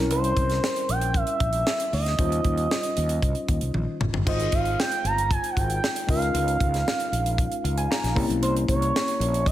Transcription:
0.00 0.10 B1 medium
0.00 1.88 G3 medium
0.00 1.88 C4 medium
0.00 1.89 C#4 medium
0.00 1.89 E4 medium
0.00 1.89 A#4 medium
0.10 0.32 C2 loud
0.10 0.91 C5 loud
0.10 closed hi-hat medium
0.24 closed hi-hat medium
0.37 0.59 C2 medium
0.37 kick medium
0.37 closed hi-hat medium
0.50 snare soft
0.50 closed hi-hat soft
0.64 snare loud
0.76 closed hi-hat soft
0.89 1.22 A#1 medium
0.89 1.17 G5 loud
0.89 closed hi-hat medium
1.01 closed hi-hat medium
1.14 1.93 E5 loud
1.14 kick loud
1.14 closed hi-hat medium
1.27 closed hi-hat medium
1.40 1.62 A#1 medium
1.40 kick loud
1.40 closed hi-hat medium
1.53 closed hi-hat medium
1.67 snare loud
1.80 closed hi-hat medium
1.93 2.15 D2 medium
1.93 3.97 D#5 medium
1.93 open hi-hat medium
2.06 snare soft
2.06 closed hi-hat soft
2.18 2.41 D#2 loud
2.18 4.22 G3 medium
2.18 4.22 C#4 soft
2.18 4.23 D#4 medium
2.18 4.23 F4 medium
2.18 4.23 C5 medium
2.18 kick loud
2.18 closed hi-hat medium
2.32 closed hi-hat medium
2.44 2.67 D#2 loud
2.44 kick medium
2.44 closed hi-hat medium
2.58 closed hi-hat soft
2.71 snare loud
2.83 closed hi-hat medium
2.97 3.19 D#2 loud
2.97 closed hi-hat medium
3.09 closed hi-hat medium
3.22 3.33 C2 medium
3.22 kick medium
3.22 closed hi-hat medium
3.35 closed hi-hat soft
3.48 3.60 D#2 medium
3.48 kick medium
3.48 closed hi-hat medium
3.61 3.73 C2 medium
3.61 closed hi-hat medium
3.74 3.85 A#1 medium
3.74 high tom medium
4.00 4.11 F#1 medium
4.00 mid tom medium
4.13 4.24 G1 medium
4.13 floor tom medium
4.25 4.49 G#1 loud
4.25 6.04 G#3 medium
4.25 6.04 C4 soft
4.25 6.05 D#4 medium
4.25 6.05 F4 soft
4.25 6.05 C5 medium
4.25 4.55 D#5 medium
4.25 kick loud
4.25 crash medium
4.40 closed hi-hat medium
4.52 4.75 G#1 medium
4.52 4.79 F5 medium
4.52 kick medium
4.52 closed hi-hat medium
4.65 closed hi-hat soft
4.80 5.07 G5 loud
4.80 snare loud
4.92 closed hi-hat medium
5.04 5.37 G1 medium
5.04 5.33 A#5 loud
5.04 closed hi-hat medium
5.18 closed hi-hat medium
5.31 5.52 G#5 loud
5.31 kick loud
5.31 closed hi-hat medium
5.44 closed hi-hat medium
5.50 5.60 F#5 medium
5.57 5.79 G#1 medium
5.57 6.09 G5 loud
5.57 kick loud
5.57 closed hi-hat medium
5.70 closed hi-hat medium
5.84 snare loud
5.96 closed hi-hat medium
6.07 6.30 C#2 loud
6.07 8.11 G#3 medium
6.07 8.12 C#4 medium
6.07 8.12 D#4 medium
6.07 8.12 F4 medium
6.07 8.13 A#4 medium
6.07 8.13 F5 loud
6.07 kick loud
6.07 open hi-hat medium
6.22 closed hi-hat medium
6.34 6.56 C#2 loud
6.34 closed hi-hat medium
6.48 closed hi-hat medium
6.60 6.82 C#2 loud
6.60 kick medium
6.60 closed hi-hat medium
6.74 snare soft
6.74 closed hi-hat soft
6.88 snare loud
7.00 closed hi-hat medium
7.12 7.45 A#1 medium
7.12 closed hi-hat medium
7.26 closed hi-hat medium
7.38 kick loud
7.38 closed hi-hat medium
7.52 closed hi-hat soft
7.64 7.86 C#2 loud
7.64 7.76 F5 medium
7.64 closed hi-hat medium
7.78 7.90 G#5 medium
7.78 closed hi-hat medium
7.91 8.39 A#5 medium
7.91 snare loud
8.03 8.16 A#1 medium
8.03 snare soft
8.03 closed hi-hat medium
8.15 8.27 C2 medium
8.15 9.52 A#3 medium
8.15 9.52 C4 medium
8.15 9.52 C#4 medium
8.15 9.52 E4 medium
8.15 9.52 G4 medium
8.15 kick loud
8.15 open hi-hat medium
8.29 8.42 B1 loud
8.29 closed hi-hat medium
8.42 8.64 C2 loud
8.42 8.54 C5 medium
8.42 closed hi-hat loud
8.57 closed hi-hat medium
8.68 8.91 C2 loud
8.68 9.48 C#5 medium
8.68 kick medium
8.68 closed hi-hat medium
8.82 closed hi-hat soft
8.96 snare loud
9.08 closed hi-hat medium
9.20 9.52 A#1 loud
9.20 closed hi-hat medium
9.34 closed hi-hat medium
9.46 9.52 E5 loud
9.46 kick loud
9.46 closed hi-hat medium

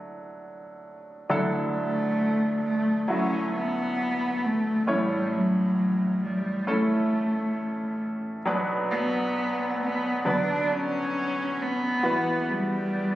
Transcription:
0.00 1.25 D3 soft
0.00 1.25 F#3 soft
0.00 1.26 A3 medium
1.30 4.84 D2 soft
1.30 4.84 D3 medium
1.30 3.00 F#3 medium
1.30 3.00 D4 medium
1.30 3.00 E4 medium
1.30 3.01 A4 medium
1.77 2.61 A3 medium
2.66 3.07 A3 medium
3.08 4.78 F#3 medium
3.08 4.79 A3 medium
3.08 3.51 C#4 medium
3.08 4.79 E4 medium
3.08 4.79 F#4 medium
3.55 4.46 B3 medium
4.44 4.87 A3 medium
4.87 8.42 A1 soft
4.87 8.42 A2 soft
4.87 5.34 G3 medium
4.87 6.58 A3 medium
4.87 6.58 C#4 medium
4.87 6.58 E4 soft
4.87 6.58 C#5 medium
5.33 6.22 F#3 medium
6.23 6.70 G3 medium
6.67 8.37 A3 medium
6.67 8.02 A3 medium
6.67 8.37 C#4 medium
6.67 8.38 E4 medium
6.67 8.38 A4 medium
8.45 12.01 B1 medium
8.45 12.01 B2 medium
8.45 10.16 F#3 medium
8.45 10.16 B3 medium
8.45 10.17 D4 medium
8.45 10.17 B4 medium
8.91 9.76 B3 medium
9.83 10.23 B3 medium
10.25 11.96 D3 medium
10.25 11.95 F#3 medium
10.25 11.95 B3 medium
10.25 10.73 D4 medium
10.25 11.96 B4 medium
10.72 11.63 C#4 medium
11.62 12.52 B3 medium
12.03 13.15 E2 soft
12.03 13.15 B3 soft
12.03 13.15 E4 soft
12.03 13.15 F#4 medium
12.03 13.15 B4 medium
12.50 13.15 G3 medium

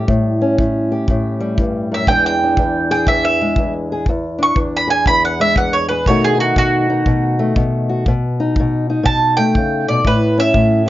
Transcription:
0.00 1.39 G3 medium
0.08 0.57 A2 medium
0.08 kick medium
0.42 2.06 C#4 medium
0.58 1.08 A2 medium
0.58 kick medium
0.92 2.06 G4 medium
1.08 2.08 A2 medium
1.08 kick medium
1.40 2.08 G3 medium
1.58 1.91 G2 medium
1.58 kick medium
1.92 2.07 F#2 medium
1.92 2.08 E5 medium
2.07 2.58 E2 medium
2.07 4.05 E3 medium
2.07 3.40 G#3 medium
2.07 2.43 D4 medium
2.07 2.91 G#4 medium
2.07 2.24 G5 medium
2.07 kick medium
2.26 2.89 G5 medium
2.43 4.06 D4 medium
2.57 3.09 E2 medium
2.57 kick medium
2.91 3.90 G#4 medium
2.91 3.07 G5 medium
3.07 3.57 E2 medium
3.07 3.24 E5 medium
3.07 kick medium
3.25 3.72 E5 medium
3.41 4.06 G#3 medium
3.56 4.07 E2 medium
3.56 kick medium
3.92 4.06 G#4 medium
4.06 4.54 E2 medium
4.06 kick medium
4.38 6.04 D4 medium
4.43 4.57 C#6 medium
4.55 5.06 E2 medium
4.55 kick medium
4.77 4.90 B5 medium
4.87 5.87 G#4 medium
4.87 5.06 G#5 medium
5.06 5.57 E2 medium
5.06 5.23 B5 loud
5.06 kick medium
5.25 5.40 F#5 medium
5.40 6.04 G#3 medium
5.40 5.56 E5 medium
5.56 6.07 E2 medium
5.56 5.73 F#5 medium
5.56 kick medium
5.73 5.88 C#5 medium
5.88 6.05 G#4 medium
5.88 6.05 B4 medium
6.06 6.56 B2 medium
6.06 8.05 D#3 medium
6.06 7.39 A3 medium
6.06 6.37 D#4 medium
6.06 7.88 F#4 medium
6.06 6.23 C#5 medium
6.06 kick medium
6.24 6.40 G#4 medium
6.38 6.89 D#4 medium
6.38 6.56 F#4 medium
6.56 7.06 B2 medium
6.56 7.54 F#4 loud
6.56 kick medium
6.90 8.04 D#4 medium
7.06 7.55 B2 medium
7.06 kick medium
7.39 8.11 A3 medium
7.56 8.04 B2 medium
7.56 kick medium
7.89 8.04 F#4 medium
8.06 8.57 B2 medium
8.06 kick medium
8.40 8.88 D#4 medium
8.56 9.02 B2 medium
8.56 kick medium
8.90 10.04 D#4 medium
9.03 9.54 B2 medium
9.03 9.36 A5 loud
9.03 kick medium
9.37 10.04 A3 medium
9.37 9.86 G5 loud
9.55 9.88 C#3 medium
9.55 kick medium
9.88 10.04 B2 medium
9.88 10.05 D5 medium
10.05 10.52 A2 medium
10.05 10.37 B4 medium
10.05 kick medium
10.38 10.89 C#4 medium
10.38 10.87 E5 medium
10.54 10.89 A2 medium
10.54 kick medium
10.86 10.89 G4 medium

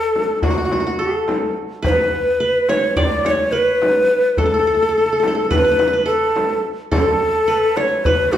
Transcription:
0.00 0.42 A4 medium
0.00 0.46 A4 medium
0.00 0.26 B4 medium
0.16 frame drum medium
0.42 1.02 F#4 medium
0.42 0.50 F#4 medium
0.42 darbuka dum medium
0.42 frame drum medium
0.50 0.57 F#4 soft
0.58 0.65 F#4 soft
0.65 0.72 F#4 soft
0.71 0.80 F#4 medium
0.71 darbuka tek medium
0.71 frame drum medium
0.80 0.86 F#4 soft
0.87 2.17 F#4 medium
0.99 2.16 A4 medium
0.99 1.57 A4 medium
1.28 darbuka tek medium
1.28 frame drum medium
1.82 2.40 B4 medium
1.82 1.90 C5 medium
1.82 darbuka dum medium
1.82 frame drum medium
1.89 2.71 B4 medium
2.12 darbuka ka soft
2.26 darbuka ka soft
2.40 3.49 B4 medium
2.40 darbuka ka soft
2.69 2.99 C#5 medium
2.69 3.03 C#5 medium
2.69 darbuka tek medium
2.69 frame drum medium
2.96 3.32 D5 medium
2.96 3.26 D5 loud
2.96 darbuka dum medium
2.96 frame drum medium
3.25 4.28 C#5 medium
3.25 3.32 D5 medium
3.25 darbuka tek medium
3.25 frame drum medium
3.31 3.53 C#5 medium
3.52 4.39 B4 medium
3.52 4.62 B4 medium
3.82 darbuka tek medium
3.82 frame drum medium
4.37 5.50 A4 medium
4.37 4.45 A4 medium
4.37 darbuka dum medium
4.37 frame drum medium
4.46 4.54 A4 soft
4.54 4.59 A4 soft
4.59 4.67 A4 soft
4.66 4.74 A4 soft
4.66 darbuka ka soft
4.74 4.82 A4 soft
4.80 4.88 A4 soft
4.80 darbuka ka soft
4.89 4.97 A4 soft
4.98 5.05 A4 soft
5.06 5.12 A4 soft
5.13 5.19 A4 soft
5.20 5.27 A4 soft
5.20 darbuka tek medium
5.24 5.34 A4 medium
5.24 frame drum medium
5.35 6.05 A4 soft
5.50 6.03 B4 medium
5.50 5.57 B4 medium
5.50 darbuka dum medium
5.50 frame drum medium
5.58 5.64 B4 medium
5.64 5.71 B4 medium
5.71 5.79 B4 soft
5.79 5.87 B4 medium
5.79 darbuka tek medium
5.79 frame drum medium
5.88 5.93 B4 soft
5.93 7.02 B4 medium
6.06 6.91 A4 medium
6.06 6.60 A4 medium
6.36 darbuka tek medium
6.36 frame drum medium
6.92 8.09 A4 medium
6.92 7.78 A4 medium
6.92 darbuka dum medium
6.92 frame drum medium
7.20 darbuka ka soft
7.35 darbuka ka soft
7.48 8.05 B4 medium
7.48 darbuka ka soft
7.77 8.38 C#5 medium
7.77 7.82 D5 medium
7.77 darbuka tek medium
7.77 frame drum medium
7.81 8.06 C#5 medium
8.05 8.34 B4 loud
8.05 8.38 B4 medium
8.05 frame drum medium
8.05 darbuka dum medium
8.32 8.38 F#4 medium
8.32 8.37 G4 medium
8.32 darbuka tek medium
8.32 frame drum medium

